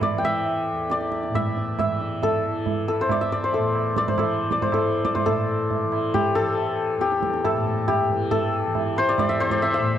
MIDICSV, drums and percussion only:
0, 0, Header, 1, 2, 480
1, 0, Start_track
1, 0, Tempo, 435730
1, 2443, Time_signature, 7, 2, 24, 8
1, 10998, End_track
2, 0, Start_track
2, 0, Title_t, "Tabla"
2, 14, Note_on_c, 9, 60, 79
2, 14, Note_on_c, 9, 64, 67
2, 124, Note_off_c, 9, 60, 0
2, 124, Note_off_c, 9, 64, 0
2, 258, Note_on_c, 9, 64, 50
2, 368, Note_off_c, 9, 64, 0
2, 503, Note_on_c, 9, 63, 75
2, 613, Note_off_c, 9, 63, 0
2, 990, Note_on_c, 9, 62, 73
2, 1100, Note_off_c, 9, 62, 0
2, 1111, Note_on_c, 9, 62, 61
2, 1222, Note_off_c, 9, 62, 0
2, 1231, Note_on_c, 9, 37, 60
2, 1341, Note_off_c, 9, 37, 0
2, 1358, Note_on_c, 9, 62, 54
2, 1468, Note_off_c, 9, 62, 0
2, 1482, Note_on_c, 9, 60, 71
2, 1482, Note_on_c, 9, 64, 64
2, 1592, Note_off_c, 9, 60, 0
2, 1592, Note_off_c, 9, 64, 0
2, 1728, Note_on_c, 9, 62, 53
2, 1838, Note_off_c, 9, 62, 0
2, 1968, Note_on_c, 9, 60, 78
2, 1968, Note_on_c, 9, 64, 68
2, 2078, Note_off_c, 9, 60, 0
2, 2078, Note_off_c, 9, 64, 0
2, 2211, Note_on_c, 9, 62, 55
2, 2321, Note_off_c, 9, 62, 0
2, 2452, Note_on_c, 9, 63, 99
2, 2452, Note_on_c, 9, 64, 92
2, 2563, Note_off_c, 9, 63, 0
2, 2563, Note_off_c, 9, 64, 0
2, 2930, Note_on_c, 9, 63, 76
2, 2930, Note_on_c, 9, 64, 69
2, 3040, Note_off_c, 9, 63, 0
2, 3040, Note_off_c, 9, 64, 0
2, 3173, Note_on_c, 9, 60, 56
2, 3283, Note_off_c, 9, 60, 0
2, 3407, Note_on_c, 9, 60, 76
2, 3407, Note_on_c, 9, 64, 68
2, 3517, Note_off_c, 9, 60, 0
2, 3517, Note_off_c, 9, 64, 0
2, 3647, Note_on_c, 9, 64, 51
2, 3757, Note_off_c, 9, 64, 0
2, 3888, Note_on_c, 9, 63, 75
2, 3998, Note_off_c, 9, 63, 0
2, 4133, Note_on_c, 9, 60, 58
2, 4243, Note_off_c, 9, 60, 0
2, 4368, Note_on_c, 9, 37, 70
2, 4478, Note_off_c, 9, 37, 0
2, 4491, Note_on_c, 9, 63, 68
2, 4491, Note_on_c, 9, 64, 61
2, 4601, Note_off_c, 9, 63, 0
2, 4601, Note_off_c, 9, 64, 0
2, 4603, Note_on_c, 9, 60, 92
2, 4603, Note_on_c, 9, 64, 83
2, 4713, Note_off_c, 9, 60, 0
2, 4713, Note_off_c, 9, 64, 0
2, 4967, Note_on_c, 9, 37, 71
2, 5078, Note_off_c, 9, 37, 0
2, 5084, Note_on_c, 9, 63, 68
2, 5084, Note_on_c, 9, 64, 60
2, 5194, Note_off_c, 9, 63, 0
2, 5194, Note_off_c, 9, 64, 0
2, 5202, Note_on_c, 9, 60, 81
2, 5202, Note_on_c, 9, 64, 74
2, 5312, Note_off_c, 9, 60, 0
2, 5312, Note_off_c, 9, 64, 0
2, 5561, Note_on_c, 9, 37, 69
2, 5671, Note_off_c, 9, 37, 0
2, 5682, Note_on_c, 9, 63, 72
2, 5682, Note_on_c, 9, 64, 60
2, 5792, Note_off_c, 9, 63, 0
2, 5792, Note_off_c, 9, 64, 0
2, 5803, Note_on_c, 9, 63, 113
2, 5803, Note_on_c, 9, 64, 103
2, 5913, Note_off_c, 9, 63, 0
2, 5913, Note_off_c, 9, 64, 0
2, 6284, Note_on_c, 9, 63, 83
2, 6284, Note_on_c, 9, 64, 75
2, 6395, Note_off_c, 9, 63, 0
2, 6395, Note_off_c, 9, 64, 0
2, 6523, Note_on_c, 9, 60, 63
2, 6634, Note_off_c, 9, 60, 0
2, 6765, Note_on_c, 9, 60, 80
2, 6765, Note_on_c, 9, 64, 79
2, 6876, Note_off_c, 9, 60, 0
2, 6876, Note_off_c, 9, 64, 0
2, 7004, Note_on_c, 9, 64, 55
2, 7115, Note_off_c, 9, 64, 0
2, 7245, Note_on_c, 9, 63, 86
2, 7355, Note_off_c, 9, 63, 0
2, 7721, Note_on_c, 9, 62, 75
2, 7831, Note_off_c, 9, 62, 0
2, 7840, Note_on_c, 9, 62, 65
2, 7950, Note_off_c, 9, 62, 0
2, 7960, Note_on_c, 9, 37, 67
2, 8071, Note_off_c, 9, 37, 0
2, 8082, Note_on_c, 9, 62, 68
2, 8192, Note_off_c, 9, 62, 0
2, 8200, Note_on_c, 9, 60, 81
2, 8200, Note_on_c, 9, 64, 69
2, 8311, Note_off_c, 9, 60, 0
2, 8311, Note_off_c, 9, 64, 0
2, 8442, Note_on_c, 9, 64, 56
2, 8552, Note_off_c, 9, 64, 0
2, 8679, Note_on_c, 9, 60, 84
2, 8679, Note_on_c, 9, 64, 74
2, 8790, Note_off_c, 9, 60, 0
2, 8790, Note_off_c, 9, 64, 0
2, 8918, Note_on_c, 9, 64, 55
2, 9028, Note_off_c, 9, 64, 0
2, 9156, Note_on_c, 9, 63, 109
2, 9156, Note_on_c, 9, 64, 100
2, 9266, Note_off_c, 9, 63, 0
2, 9266, Note_off_c, 9, 64, 0
2, 9639, Note_on_c, 9, 63, 91
2, 9639, Note_on_c, 9, 64, 81
2, 9749, Note_off_c, 9, 63, 0
2, 9749, Note_off_c, 9, 64, 0
2, 9877, Note_on_c, 9, 60, 68
2, 9987, Note_off_c, 9, 60, 0
2, 10114, Note_on_c, 9, 60, 89
2, 10114, Note_on_c, 9, 64, 78
2, 10224, Note_off_c, 9, 60, 0
2, 10224, Note_off_c, 9, 64, 0
2, 10353, Note_on_c, 9, 62, 62
2, 10463, Note_off_c, 9, 62, 0
2, 10468, Note_on_c, 9, 64, 58
2, 10578, Note_off_c, 9, 64, 0
2, 10589, Note_on_c, 9, 63, 79
2, 10699, Note_off_c, 9, 63, 0
2, 10998, End_track
0, 0, End_of_file